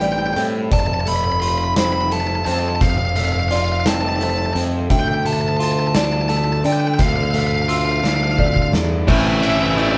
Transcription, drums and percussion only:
0.01 closed hi-hat
0.36 closed hi-hat
0.72 kick, closed hi-hat
1.07 closed hi-hat
1.42 closed hi-hat
1.76 snare, closed hi-hat
2.12 closed hi-hat
2.46 closed hi-hat
2.81 kick, closed hi-hat
3.16 closed hi-hat
3.51 closed hi-hat
3.86 snare, closed hi-hat
4.21 closed hi-hat
4.56 closed hi-hat
4.90 kick, closed hi-hat
5.26 closed hi-hat
5.60 closed hi-hat
5.95 snare, closed hi-hat
6.29 closed hi-hat
6.64 closed hi-hat
6.99 kick, closed hi-hat
7.34 closed hi-hat
7.69 closed hi-hat
8.04 snare
8.39 kick
8.56 kick
8.73 snare
9.08 kick, crash
9.43 ride
9.78 ride

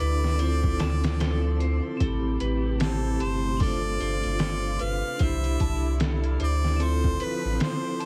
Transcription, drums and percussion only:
0.00 closed hi-hat
0.24 snare
0.39 closed hi-hat
0.64 kick
0.80 snare, closed hi-hat
1.04 snare, closed hi-hat
1.20 snare, closed hi-hat
1.60 closed hi-hat
2.00 kick, closed hi-hat
2.40 closed hi-hat
2.80 snare, closed hi-hat
3.20 closed hi-hat
3.60 kick, open hi-hat
4.01 closed hi-hat
4.24 closed hi-hat
4.39 snare, closed hi-hat
4.79 closed hi-hat
5.19 kick, closed hi-hat
5.44 closed hi-hat
5.60 kick, closed hi-hat
6.00 snare, closed hi-hat
6.24 closed hi-hat
6.40 closed hi-hat
6.65 snare
6.80 closed hi-hat
7.04 kick
7.20 closed hi-hat
7.60 snare, closed hi-hat
8.01 closed hi-hat

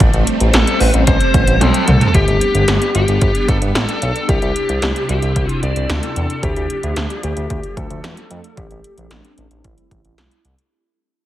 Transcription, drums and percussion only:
0.00 kick, closed hi-hat
0.14 closed hi-hat
0.27 closed hi-hat
0.40 closed hi-hat
0.54 snare, closed hi-hat
0.67 closed hi-hat
0.81 open hi-hat
0.94 closed hi-hat
1.07 kick, closed hi-hat
1.21 closed hi-hat
1.34 kick, closed hi-hat
1.48 closed hi-hat
1.61 closed hi-hat, high tom
1.74 closed hi-hat
1.88 closed hi-hat, mid tom
2.01 closed hi-hat, floor tom
2.15 kick, closed hi-hat
2.28 closed hi-hat
2.41 closed hi-hat
2.55 closed hi-hat
2.68 snare, closed hi-hat
2.82 closed hi-hat
2.95 closed hi-hat
3.08 closed hi-hat
3.21 kick, closed hi-hat
3.35 closed hi-hat
3.48 kick, closed hi-hat
3.62 closed hi-hat
3.75 snare, closed hi-hat
3.89 closed hi-hat
4.02 closed hi-hat
4.16 closed hi-hat
4.29 kick, closed hi-hat
4.42 closed hi-hat
4.56 closed hi-hat
4.69 closed hi-hat
4.82 snare, closed hi-hat
4.96 closed hi-hat
5.09 closed hi-hat
5.22 closed hi-hat
5.36 kick, closed hi-hat
5.49 closed hi-hat
5.63 closed hi-hat
5.76 closed hi-hat
5.90 snare, closed hi-hat
6.03 closed hi-hat
6.16 closed hi-hat
6.30 closed hi-hat
6.43 kick, closed hi-hat
6.56 closed hi-hat
6.70 closed hi-hat
6.83 closed hi-hat
6.96 snare, closed hi-hat
7.10 closed hi-hat
7.23 closed hi-hat
7.37 closed hi-hat
7.50 kick, closed hi-hat
7.63 closed hi-hat
7.77 kick, closed hi-hat
7.90 closed hi-hat
8.04 snare, closed hi-hat
8.17 closed hi-hat
8.31 closed hi-hat
8.44 closed hi-hat
8.57 kick, closed hi-hat
8.71 closed hi-hat
8.84 closed hi-hat
8.98 closed hi-hat
9.11 snare, closed hi-hat
9.25 closed hi-hat
9.38 closed hi-hat
9.51 closed hi-hat
9.64 kick, closed hi-hat
9.78 closed hi-hat
9.91 kick, closed hi-hat
10.05 closed hi-hat
10.18 snare, closed hi-hat
10.31 closed hi-hat
10.45 closed hi-hat
10.58 closed hi-hat

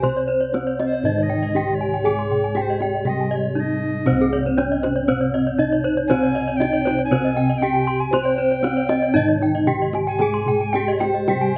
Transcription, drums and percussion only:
0.03 kendang high, kendang low
0.29 kendang slap
0.40 kendang slap
0.54 kendang high
0.80 kendang high
1.05 kendang low
1.31 kendang slap
1.55 kendang low
1.68 kendang slap
2.06 kendang high, kendang low
2.19 kendang slap
2.30 kendang low
2.55 kendang slap, kendang high
2.80 kendang high
2.93 kendang slap
3.05 kendang high, kendang low
4.06 kendang high, kendang low
4.32 kendang slap
4.45 kendang slap
4.58 kendang high
4.84 kendang high
5.09 kendang low
5.35 kendang slap
5.59 kendang low
5.72 kendang slap
6.11 kendang high, kendang low
6.36 kendang slap
6.49 kendang slap
6.61 kendang high
6.87 kendang high
7.13 kendang high, kendang low
7.37 kendang slap
7.62 kendang low
7.76 kendang slap
8.13 kendang high, kendang low
8.38 kendang slap
8.51 kendang slap
8.64 kendang high
8.89 kendang high
9.16 kendang low
9.41 kendang slap
9.67 kendang low
9.80 kendang slap
9.93 kendang high
10.19 kendang high, kendang low
10.33 kendang slap
10.46 kendang slap, kendang low
10.60 kendang slap
10.74 kendang high
11.01 kendang high
11.14 kendang slap
11.28 kendang high, kendang low

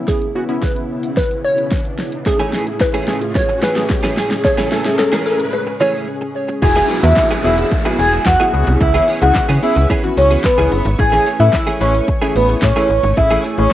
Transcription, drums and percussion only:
0.08 kick, snare
0.22 closed hi-hat
0.49 closed hi-hat
0.62 kick, snare
0.76 closed hi-hat
1.03 closed hi-hat
1.17 kick, snare
1.31 closed hi-hat
1.58 closed hi-hat
1.72 kick, snare
1.85 closed hi-hat
1.99 snare
2.12 closed hi-hat
2.26 kick, snare
2.40 closed hi-hat
2.53 snare
2.67 closed hi-hat
2.81 kick, snare, clap
2.94 closed hi-hat
3.08 snare
3.21 closed hi-hat
3.35 kick, snare
3.49 closed hi-hat
3.62 snare
3.76 snare, closed hi-hat
3.90 kick, snare, clap
4.03 snare, closed hi-hat
4.17 snare
4.31 snare, closed hi-hat
4.44 kick, snare
4.58 snare, closed hi-hat
4.71 snare, open hi-hat
4.85 snare, closed hi-hat
4.99 snare, clap
5.13 snare, closed hi-hat
5.26 open hi-hat
5.40 closed hi-hat
6.62 kick, crash, shaker
6.76 closed hi-hat, shaker
6.90 open hi-hat, shaker
7.03 closed hi-hat, shaker
7.16 kick, snare, clap, shaker
7.31 closed hi-hat, shaker
7.44 open hi-hat, shaker
7.58 closed hi-hat, shaker
7.71 kick, shaker
7.86 closed hi-hat, shaker
7.99 open hi-hat, shaker
8.13 closed hi-hat, shaker
8.26 kick, snare, clap, shaker
8.40 closed hi-hat, shaker
8.54 open hi-hat, shaker
8.67 closed hi-hat, shaker
8.81 kick, shaker
8.95 closed hi-hat, shaker
9.08 open hi-hat, shaker
9.21 closed hi-hat, shaker
9.34 kick, snare, clap, shaker
9.49 closed hi-hat, shaker
9.63 open hi-hat, shaker
9.76 closed hi-hat, shaker
9.90 kick, shaker
10.04 closed hi-hat, shaker
10.17 open hi-hat, shaker
10.31 closed hi-hat, shaker
10.44 kick, snare, clap, shaker
10.58 closed hi-hat, shaker
10.72 open hi-hat, shaker
10.85 closed hi-hat, shaker
10.99 kick, shaker
11.13 closed hi-hat, shaker
11.26 open hi-hat, shaker
11.40 closed hi-hat, shaker
11.53 kick, snare, clap, shaker
11.68 closed hi-hat, shaker
11.81 open hi-hat, shaker
11.94 closed hi-hat, shaker
12.08 kick, shaker
12.22 closed hi-hat, shaker
12.36 open hi-hat, shaker
12.49 closed hi-hat, shaker
12.62 kick, snare, clap, shaker
12.76 closed hi-hat, shaker
12.90 open hi-hat, shaker
13.03 closed hi-hat, shaker
13.17 kick, shaker
13.31 closed hi-hat, shaker
13.44 open hi-hat, shaker
13.58 closed hi-hat, shaker

